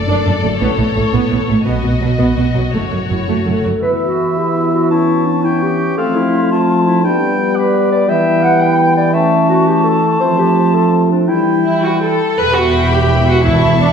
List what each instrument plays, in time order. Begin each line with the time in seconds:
Already playing: violin section A4 D5
0.07 double bass section F#1, cello section F#2, viola section D4
0.25 double bass section F#1, cello section F#2, viola section D4
0.43 double bass section F#1, cello section F#2, viola section A3
0.60 double bass section A1, cello section A2, viola section B3, violin section C#5
0.78 double bass section A1, cello section A2, viola section B3
0.95 double bass section A1, cello section A2, viola section A3
1.13 double bass section A1, cello section A2, viola section B3
1.30 double bass section A1, cello section A2, viola section B3
1.48 double bass section A1, cello section A2, viola section A3
1.65 double bass section B1, cello section B2, viola section B3, violin section F#4 D#5
1.83 double bass section B1, cello section B2, viola section B3
2.00 double bass section B1, cello section B2, viola section F#3
2.18 double bass section B1, cello section B2, viola section B3
2.36 double bass section B1, cello section B2, viola section B3
2.54 double bass section B1, cello section B2, viola section F#3
2.73 double bass section F#1, cello section F#2, viola section A3, violin section C#5
2.91 double bass section F#1, cello section F#2, viola section A3
3.09 double bass section F#1, cello section F#2, viola section F#3, clarinet E4
3.27 double bass section F#1, cello section F#2, viola section A3, clarinet F#4
3.45 double bass section F#1, cello section F#2, viola section A3, clarinet A4
3.64 double bass section F#1, cello section F#2, viola section F#3
3.82 trombone section E3, french horn section B3 E4, clarinet B4, cor anglais E5, flute B5
4.02 clarinet F#4
4.38 clarinet G4
4.74 clarinet F#4
4.90 french horn section C#4, clarinet E4, cor anglais A5, flute C#6
5.25 clarinet D4
5.44 clarinet E4, cor anglais G5, flute C#6
5.63 clarinet G4
5.98 trombone section F3, french horn section A3 C4, clarinet A4, cor anglais F5, flute C6
6.15 clarinet E4
6.51 clarinet F4, cor anglais A5
6.87 clarinet E4
7.04 trombone section G3, french horn section G3 B3, clarinet D4, cor anglais G5, flute B5
7.56 clarinet B4, cor anglais D5, flute B5
7.91 clarinet D5
8.09 trombone section E3, clarinet E5, cor anglais G5, flute B5
8.43 clarinet F#5
8.60 clarinet G5
8.96 clarinet D5
9.13 french horn section A3 C#4, clarinet E5, cor anglais A5, flute C#6
9.49 clarinet F#4
9.67 clarinet G4
9.84 clarinet A4
10.20 trombone section F3, french horn section C4, clarinet C5, flute C6
10.38 clarinet G4
10.74 clarinet A4
11.10 clarinet D4
11.28 trombone section E3, french horn section G3 E4, clarinet E4, cor anglais G5, flute B5
11.65 viola section E4
11.83 viola section F#4
12.02 viola section A4
12.38 double bass section E1, cello section E2, viola section B4, violin section E5 G5 B5
12.56 viola section F#4
12.92 viola section G4
13.28 viola section F#4
13.45 timpani E2, viola section E4, violin section A5 C#6
13.81 viola section D4